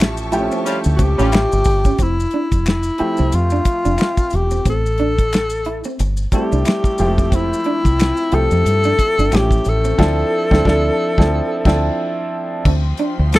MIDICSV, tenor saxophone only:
0, 0, Header, 1, 2, 480
1, 0, Start_track
1, 0, Tempo, 666667
1, 1433, Time_signature, 4, 2, 24, 8
1, 9641, End_track
2, 0, Start_track
2, 0, Title_t, "Tenor saxophone"
2, 0, Program_c, 0, 66
2, 693, Note_on_c, 0, 66, 67
2, 742, Note_on_c, 0, 67, 92
2, 753, Note_off_c, 0, 66, 0
2, 1459, Note_on_c, 0, 64, 76
2, 1470, Note_off_c, 0, 67, 0
2, 1926, Note_off_c, 0, 64, 0
2, 1937, Note_on_c, 0, 64, 76
2, 2413, Note_on_c, 0, 65, 86
2, 2424, Note_off_c, 0, 64, 0
2, 3135, Note_on_c, 0, 67, 75
2, 3146, Note_off_c, 0, 65, 0
2, 3364, Note_off_c, 0, 67, 0
2, 3380, Note_on_c, 0, 69, 88
2, 4298, Note_off_c, 0, 69, 0
2, 4573, Note_on_c, 0, 67, 89
2, 5293, Note_on_c, 0, 64, 85
2, 5304, Note_off_c, 0, 67, 0
2, 6009, Note_on_c, 0, 69, 109
2, 6020, Note_off_c, 0, 64, 0
2, 6735, Note_on_c, 0, 67, 89
2, 6746, Note_off_c, 0, 69, 0
2, 6976, Note_on_c, 0, 69, 96
2, 6987, Note_off_c, 0, 67, 0
2, 8644, Note_off_c, 0, 69, 0
2, 9616, Note_on_c, 0, 69, 93
2, 9641, Note_off_c, 0, 69, 0
2, 9641, End_track
0, 0, End_of_file